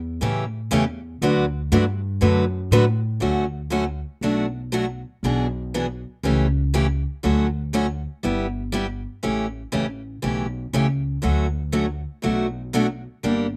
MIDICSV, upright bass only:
0, 0, Header, 1, 2, 480
1, 0, Start_track
1, 0, Key_signature, 2, "major"
1, 0, Tempo, 500835
1, 1164, Time_signature, 4, 2, 24, 8
1, 13003, End_track
2, 0, Start_track
2, 0, Title_t, "Upright bass"
2, 0, Program_c, 0, 32
2, 0, Note_on_c, 0, 40, 95
2, 190, Note_off_c, 0, 40, 0
2, 206, Note_on_c, 0, 45, 81
2, 671, Note_off_c, 0, 45, 0
2, 686, Note_on_c, 0, 40, 85
2, 1151, Note_off_c, 0, 40, 0
2, 1165, Note_on_c, 0, 38, 84
2, 1631, Note_off_c, 0, 38, 0
2, 1647, Note_on_c, 0, 43, 99
2, 2112, Note_off_c, 0, 43, 0
2, 2122, Note_on_c, 0, 42, 90
2, 2590, Note_off_c, 0, 42, 0
2, 2598, Note_on_c, 0, 45, 84
2, 3068, Note_off_c, 0, 45, 0
2, 3083, Note_on_c, 0, 38, 75
2, 3854, Note_off_c, 0, 38, 0
2, 4037, Note_on_c, 0, 35, 77
2, 4812, Note_off_c, 0, 35, 0
2, 5011, Note_on_c, 0, 35, 76
2, 5781, Note_off_c, 0, 35, 0
2, 5975, Note_on_c, 0, 37, 85
2, 6744, Note_off_c, 0, 37, 0
2, 6944, Note_on_c, 0, 38, 74
2, 7709, Note_off_c, 0, 38, 0
2, 7904, Note_on_c, 0, 31, 80
2, 8668, Note_off_c, 0, 31, 0
2, 8858, Note_on_c, 0, 33, 75
2, 9241, Note_off_c, 0, 33, 0
2, 9340, Note_on_c, 0, 33, 74
2, 9745, Note_off_c, 0, 33, 0
2, 9813, Note_on_c, 0, 35, 73
2, 10221, Note_off_c, 0, 35, 0
2, 10285, Note_on_c, 0, 37, 69
2, 10696, Note_off_c, 0, 37, 0
2, 10772, Note_on_c, 0, 38, 79
2, 11538, Note_off_c, 0, 38, 0
2, 11738, Note_on_c, 0, 35, 74
2, 12501, Note_off_c, 0, 35, 0
2, 12688, Note_on_c, 0, 31, 78
2, 13003, Note_off_c, 0, 31, 0
2, 13003, End_track
0, 0, End_of_file